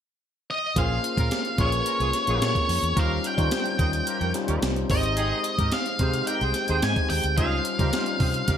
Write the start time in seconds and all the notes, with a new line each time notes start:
0.51 D#5
0.76 A#1 A#3 C#4 F4 G#4 C5 F5, kick, closed hi-hat
1.04 closed hi-hat
1.17 A#2 C#4 F4 A#4, kick, closed hi-hat
1.31 snare, closed hi-hat
1.45 closed hi-hat
1.58 A#1 A#3 C#4 F4 G#4 B4 C#5, kick, closed hi-hat
1.66 C#5
1.72 closed hi-hat
1.86 C#4 F4 A#4, closed hi-hat
1.99 C2 F4 G#4 C#5, closed hi-hat
2.13 snare, closed hi-hat
2.27 A#1 A#3 C#4 F4 G#4 C#5, closed hi-hat
2.41 A#2 C#5, snare, closed hi-hat
2.55 kick, closed hi-hat
2.69 F2, open hi-hat
2.83 E2, closed hi-hat
2.96 D#2 G3 C#4 D#4 F4 G4 A#4 C5 F5, kick, closed hi-hat
3.24 G5, closed hi-hat
3.37 D#3 G3 C#4 D#4 F4 G4 A#4 C5 C#5, kick, closed hi-hat
3.51 snare, closed hi-hat
3.66 closed hi-hat
3.79 D#2 A#4 C5 D#5, kick, closed hi-hat
3.93 closed hi-hat
4.07 F4 G4 A#4, closed hi-hat
4.20 F2 G4 A#4 C#5, closed hi-hat
4.34 G3 C#4 D#4 F4 C5, snare, closed hi-hat
4.48 D#2 G4 A#4 C#5, closed hi-hat
4.62 C2, snare, closed hi-hat
4.76 closed hi-hat
4.89 G#1 G#3 C4 D#4 G4 C5 D#5, kick, open hi-hat
5.03 closed hi-hat
5.17 C4 D#4 G#4, closed hi-hat
5.44 closed hi-hat
5.58 G#2 D#4 G4 A#4, kick, closed hi-hat
5.72 F5, snare, closed hi-hat
5.86 closed hi-hat
5.99 C3 G#3 C4 D#4 G4 G#4 C5, kick, closed hi-hat
6.14 closed hi-hat
6.27 D#4 G4 A#4 G5, closed hi-hat
6.41 C2 C4 G#4 C5, closed hi-hat
6.54 snare, closed hi-hat
6.68 D#2 G#3 C4 D#4 G4 G#4 C5, closed hi-hat
6.82 G#2 G#5, snare, closed hi-hat
6.96 kick, closed hi-hat
7.10 D#2 G5, open hi-hat
7.23 D2, closed hi-hat
7.37 C#2 G3 C#4 D#4 F4 G#4 C5 F5, kick, closed hi-hat
7.65 closed hi-hat
7.78 C#3 G3 C#4 D#4 F4 G4 A#4 C5, kick, closed hi-hat
7.93 snare, closed hi-hat
8.06 closed hi-hat
8.20 C3 C4 G#4 C5, kick, open hi-hat
8.34 closed hi-hat
8.48 C#2 D#4 G4 A#4, kick, snare, closed hi-hat